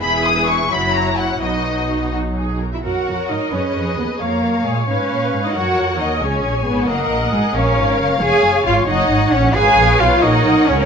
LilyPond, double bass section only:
\new Staff \with { instrumentName = "Double bass section" } { \clef bass \time 6/8 \key b \major \tempo 4. = 89 e,,4. fis,,4. | b,,2~ b,,8 r8 | \key fis \major fis,8 eis,8 gis,8 fis,8 eis,8 dis,8 | eis,8 fis,8 ais,8 gis,8 ais,8 gis,8 |
fis,8 eis,8 dis,8 cis,8 ais,,8 gis,,8 | fis,,8 ais,,8 gis,,8 ais,,8 gis,,8 fis,,8 | eis,,8 fis,,8 gis,,8 fis,,8 gis,,8 ais,,8 | gis,,8 ais,,8 b,,8 ais,,8 b,,8 cis,8 | }